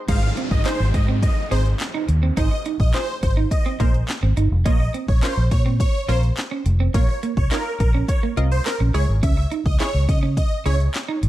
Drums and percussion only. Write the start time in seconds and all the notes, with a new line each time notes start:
0.08 kick, closed hi-hat, crash
0.37 closed hi-hat
0.51 kick
0.65 snare, clap, closed hi-hat
0.94 kick, closed hi-hat
1.23 kick, closed hi-hat
1.52 closed hi-hat
1.66 closed hi-hat
1.80 snare, clap, closed hi-hat
2.08 closed hi-hat
2.37 kick, closed hi-hat
2.66 closed hi-hat
2.80 kick
2.94 snare, clap, closed hi-hat
3.23 kick, closed hi-hat
3.51 kick, closed hi-hat
3.80 kick, closed hi-hat
3.94 closed hi-hat
4.09 snare, clap, closed hi-hat
4.37 closed hi-hat
4.66 kick, closed hi-hat
4.94 closed hi-hat
5.08 kick
5.23 snare, clap, closed hi-hat
5.52 kick, closed hi-hat
5.80 kick, closed hi-hat
6.09 closed hi-hat
6.23 closed hi-hat
6.37 snare, clap, closed hi-hat
6.66 closed hi-hat
6.94 kick, closed hi-hat
7.23 closed hi-hat
7.37 kick
7.51 snare, clap, closed hi-hat
7.80 kick, closed hi-hat
8.09 kick, closed hi-hat
8.37 closed hi-hat
8.52 closed hi-hat
8.66 snare, clap, closed hi-hat
8.95 open hi-hat
9.23 kick, closed hi-hat
9.52 closed hi-hat
9.66 kick
9.80 snare, clap, closed hi-hat
10.09 kick, closed hi-hat
10.37 kick, closed hi-hat
10.66 closed hi-hat
10.80 closed hi-hat
10.94 snare, clap, closed hi-hat
11.23 closed hi-hat